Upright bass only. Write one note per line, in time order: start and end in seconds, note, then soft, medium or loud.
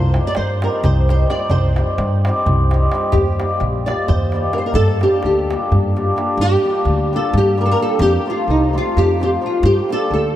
0.00 0.16 C2 loud
0.37 0.66 G2 medium
0.83 1.23 C2 loud
1.49 1.79 C2 medium
1.98 2.27 G2 loud
2.46 2.86 C2 medium
3.14 3.43 D#2 medium
3.61 3.90 A#1 medium
4.09 4.49 D#2 loud
4.75 5.04 G2 medium
5.24 5.53 D2 medium
5.72 6.11 G2 medium
6.37 6.54 G2 loud
6.85 7.14 D2 loud
7.33 7.73 G2 loud
7.99 8.16 F2 loud
8.48 8.77 C2 medium
8.97 9.36 F2 medium
9.63 9.79 G2 loud
10.11 10.36 D2 medium